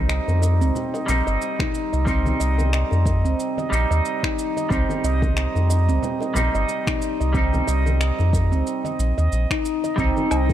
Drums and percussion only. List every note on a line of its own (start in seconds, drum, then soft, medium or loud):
0.09 finger snap medium
0.09 shaker soft
0.28 high bongo soft
0.28 high conga soft
0.28 shaker soft
0.42 high bongo soft
0.42 shaker medium
0.62 shaker soft
0.75 low conga medium
0.75 shaker soft
0.94 high bongo medium
0.94 shaker soft
1.08 low conga medium
1.08 shaker medium
1.27 shaker soft
1.42 shaker soft
1.59 finger snap medium
1.59 kick loud
1.59 low conga medium
1.59 shaker soft
1.75 shaker medium
1.93 shaker soft
2.07 kick loud
2.07 shaker soft
2.25 high bongo soft
2.25 high conga medium
2.25 low conga medium
2.25 shaker soft
2.40 shaker medium
2.58 high bongo soft
2.58 high conga medium
2.58 shaker soft
2.73 finger snap medium
2.73 shaker soft
2.91 high bongo medium
2.91 high conga soft
2.91 shaker soft
3.05 kick loud
3.05 high bongo soft
3.05 shaker medium
3.25 shaker soft
3.40 shaker soft
3.58 high conga medium
3.58 shaker soft
3.73 shaker medium
3.92 shaker soft
4.05 shaker soft
4.23 finger snap medium
4.23 kick medium
4.23 shaker soft
4.39 shaker medium
4.57 high conga soft
4.57 shaker soft
4.71 kick loud
4.71 shaker soft
4.89 high bongo soft
4.89 high conga medium
4.89 shaker soft
5.04 shaker medium
5.22 kick loud
5.22 high bongo soft
5.22 high conga medium
5.22 shaker soft
5.37 finger snap medium
5.37 shaker soft
5.55 high bongo soft
5.55 high conga soft
5.55 shaker soft
5.70 high bongo soft
5.70 shaker medium
5.89 shaker soft
6.03 low conga medium
6.03 shaker soft
6.21 high bongo medium
6.21 shaker soft
6.35 low conga loud
6.35 shaker medium
6.55 shaker soft
6.69 shaker soft
6.87 finger snap medium
6.87 kick loud
6.87 low conga medium
6.87 shaker soft
7.02 shaker medium
7.21 shaker soft
7.34 kick loud
7.34 shaker soft
7.53 high bongo medium
7.53 high conga medium
7.53 low conga medium
7.53 shaker soft
7.68 shaker medium
7.86 high bongo soft
7.86 high conga medium
7.86 shaker soft
8.01 finger snap medium
8.01 shaker soft
8.19 high bongo soft
8.19 high conga soft
8.19 shaker soft
8.33 kick loud
8.33 high bongo soft
8.33 shaker medium
8.53 shaker soft
8.67 shaker soft
8.84 high conga medium
8.84 shaker soft
9.00 shaker medium
9.18 shaker soft
9.32 shaker soft
9.51 finger snap medium
9.51 kick medium
9.51 shaker soft
9.65 shaker medium
9.84 high conga soft
9.84 shaker soft
9.98 kick loud
9.98 shaker soft
10.17 high bongo soft
10.17 high conga medium
10.17 shaker soft
10.31 low woodblock medium
10.31 shaker medium
10.50 kick medium
10.50 high bongo soft
10.50 shaker soft